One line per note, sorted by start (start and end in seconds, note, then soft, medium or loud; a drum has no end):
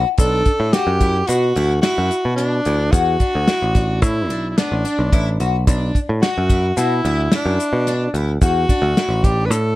0.18 0.42 B1 medium
0.18 0.51 D4 medium
0.18 0.75 A4 loud
0.18 kick loud
0.18 closed hi-hat medium
0.18 shaker medium
0.46 kick medium
0.46 closed hi-hat medium
0.46 shaker soft
0.60 0.72 A2 medium
0.73 0.90 F#4 medium
0.73 1.28 G4 loud
0.73 snare loud
0.73 closed hi-hat medium
0.87 1.21 F#2 loud
1.01 1.17 E4 medium
1.01 kick medium
1.01 closed hi-hat medium
1.01 shaker soft
1.27 1.52 B2 medium
1.27 1.81 F#4 medium
1.27 1.44 F#4 medium
1.27 closed hi-hat medium
1.27 shaker medium
1.56 1.79 D2 medium
1.56 1.72 E4 medium
1.56 closed hi-hat medium
1.81 2.15 E4 medium
1.81 2.34 F#4 loud
1.81 snare loud
1.81 closed hi-hat medium
1.98 2.09 F#2 medium
2.11 closed hi-hat medium
2.11 shaker soft
2.25 2.59 B2 medium
2.36 2.93 D4 medium
2.36 2.54 D4 medium
2.36 closed hi-hat medium
2.65 2.89 D2 medium
2.65 2.82 E4 medium
2.65 closed hi-hat medium
2.92 3.16 E2 loud
2.92 4.01 F#4 loud
2.92 3.10 F#4 medium
2.92 kick loud
2.92 closed hi-hat medium
2.92 shaker medium
3.20 3.37 D4 medium
3.20 kick medium
3.20 closed hi-hat medium
3.35 3.47 D2 medium
3.48 3.64 E4 medium
3.48 snare loud
3.48 closed hi-hat medium
3.48 shaker soft
3.62 4.02 A1 medium
3.75 4.07 D4 medium
3.75 kick medium
3.75 snare soft
3.75 closed hi-hat medium
3.75 shaker soft
4.02 4.30 A2 medium
4.02 4.50 E4 medium
4.02 kick loud
4.02 closed hi-hat medium
4.02 shaker medium
4.30 4.53 B1 medium
4.30 4.46 D4 medium
4.30 closed hi-hat medium
4.50 4.59 E4 medium
4.57 4.74 B3 medium
4.57 5.40 D4 medium
4.57 snare loud
4.57 closed hi-hat medium
4.57 shaker soft
4.72 4.83 A1 medium
4.85 5.01 D4 medium
4.85 closed hi-hat medium
4.85 shaker soft
4.99 5.10 B1 medium
5.12 5.38 A1 medium
5.12 5.29 E4 medium
5.12 kick medium
5.12 closed hi-hat medium
5.40 5.65 B1 medium
5.40 5.56 F#4 medium
5.40 closed hi-hat medium
5.40 shaker soft
5.67 5.90 B1 loud
5.67 5.99 D4 medium
5.67 kick loud
5.67 closed hi-hat medium
5.67 shaker medium
5.95 kick medium
5.95 closed hi-hat medium
5.95 shaker soft
6.09 6.21 A2 medium
6.22 6.79 F#4 medium
6.22 6.38 F#4 medium
6.22 snare loud
6.22 closed hi-hat medium
6.38 6.71 F#2 medium
6.50 6.66 E4 medium
6.50 kick medium
6.50 closed hi-hat medium
6.50 shaker soft
6.77 7.00 B2 medium
6.77 7.32 E4 medium
6.77 6.93 F#4 medium
6.77 snare soft
6.77 closed hi-hat medium
6.77 shaker medium
7.05 7.28 D2 medium
7.05 7.21 E4 medium
7.05 closed hi-hat medium
7.32 8.12 D4 medium
7.32 7.64 E4 medium
7.32 snare loud
7.32 closed hi-hat medium
7.46 7.57 F#2 medium
7.60 closed hi-hat soft
7.60 shaker soft
7.73 8.07 B2 medium
7.87 8.03 D4 medium
7.87 snare soft
7.87 closed hi-hat medium
8.14 8.37 D2 medium
8.14 8.31 E4 medium
8.14 closed hi-hat medium
8.42 8.64 E2 loud
8.42 8.58 F#4 medium
8.42 9.26 F#4 loud
8.42 kick loud
8.42 closed hi-hat medium
8.42 shaker medium
8.69 8.85 D4 medium
8.69 kick medium
8.69 closed hi-hat medium
8.69 shaker soft
8.82 8.94 D2 loud
8.97 9.13 E4 medium
8.97 snare loud
8.97 closed hi-hat medium
9.09 9.50 A1 medium
9.24 9.55 D4 medium
9.24 9.47 G4 medium
9.24 kick medium
9.24 closed hi-hat medium
9.24 shaker soft
9.45 9.52 B4 medium
9.50 9.76 A2 medium
9.50 9.76 A4 medium
9.50 closed hi-hat medium
9.50 shaker medium